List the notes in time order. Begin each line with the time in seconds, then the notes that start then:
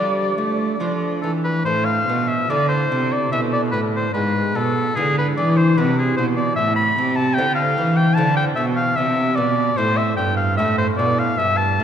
Already playing: G3 A3 D4 F4 D5
0.37 A3
0.79 F3 A3 D4 F4
1.22 E3 A4
1.44 B4
1.65 A2 C5
1.85 F5
2.07 B2
2.28 E5
2.49 D3 A3 E4 D5
2.69 C5
2.90 C3
3.12 D5
3.31 B2 A3 E4 E5
3.53 D5
3.71 A2 B4
3.96 C5
4.13 G#2 B4
4.55 B2 A4
4.95 D3 B3 E4 G#4
5.18 B4
5.37 E3 D5
5.57 C5
5.77 C3 B3 E4 B4
5.99 G#4
6.17 B2 C5
6.37 D5
6.56 A2 E5
6.76 B5
6.98 C3
7.16 A5
7.34 D3 G5
7.38 D3 C4 E4
7.55 F5
7.78 E3
7.97 G5
8.14 D3 C4 E4 A5
8.37 G5
8.56 B2 E5
8.76 F5
8.96 C3 E5
9.36 B2 D5
9.77 A2 A3 E4 C5
9.97 E5
10.17 G2 G5
10.36 F5
10.57 A2 A3 E4 E5
10.78 C5
10.97 B2 D5
11.19 F5
11.38 G2 E5
11.57 A5
11.79 A2